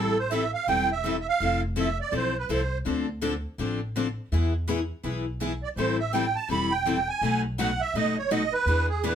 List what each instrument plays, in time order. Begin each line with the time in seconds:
Already playing: upright bass A1, steel-string acoustic guitar E3 G3 C4 E4 A4, accordion A4
0.19 accordion C5
0.31 steel-string acoustic guitar E3 G3 C4 E4 A4, accordion E5
0.54 accordion F5
0.67 upright bass E1, steel-string acoustic guitar E3 G3 C4 E4 A4, accordion G5
0.92 accordion E5
1.04 steel-string acoustic guitar E3 G3 C4 E4 A4
1.20 accordion E5
1.29 accordion F5
1.40 upright bass F1, steel-string acoustic guitar F3 C4 E4 A4
1.76 steel-string acoustic guitar F3 C4 E4 A4, accordion E5
2.01 accordion D5
2.12 upright bass B1, steel-string acoustic guitar F3 C4 E4 A4, accordion C5
2.38 accordion B4
2.49 upright bass C2, steel-string acoustic guitar F3 C4 E4 A4
2.53 accordion C5
2.86 upright bass D2, steel-string acoustic guitar D3 F3 C4 D4 A4
3.21 steel-string acoustic guitar D3 F3 C4 D4 A4
3.58 upright bass A1, steel-string acoustic guitar D3 F3 C4 D4 A4
3.96 steel-string acoustic guitar D3 F3 C4 D4 A4
4.32 upright bass E2, steel-string acoustic guitar E3 G#3 B3 E4 G#4
4.67 steel-string acoustic guitar E3 G#3 B3 E4 G#4
5.03 upright bass B1, steel-string acoustic guitar E3 G#3 B3 E4 G#4
5.40 steel-string acoustic guitar E3 G#3 B3 E4 G#4
5.63 accordion D5
5.76 upright bass A1, steel-string acoustic guitar E3 G3 C4 E4 A4, accordion C5
5.99 accordion E5
6.13 steel-string acoustic guitar E3 G3 C4 E4 A4, accordion G5
6.35 accordion A5
6.49 upright bass E1, steel-string acoustic guitar E3 G3 C4 E4 A4, accordion B5
6.72 accordion G5
6.87 steel-string acoustic guitar E3 G3 C4 E4 A4
7.08 accordion G#5
7.22 upright bass B1, steel-string acoustic guitar B2 F#3 A3 D#4 F#4 B4
7.59 steel-string acoustic guitar B2 F#3 A3 D#4 F#4 B4, accordion F#5
7.81 accordion E5
7.94 upright bass F#1, steel-string acoustic guitar B2 F#3 A3 D#4 F#4 B4, accordion D#5
8.18 accordion C#5
8.31 steel-string acoustic guitar B2 F#3 A3 D#4 F#4 B4, accordion D#5
8.53 accordion B4
8.66 upright bass E2, steel-string acoustic guitar E3 B3 D4 G#4 B4
8.89 accordion G#4
9.04 steel-string acoustic guitar E3 B3 D4 G#4 B4, accordion B4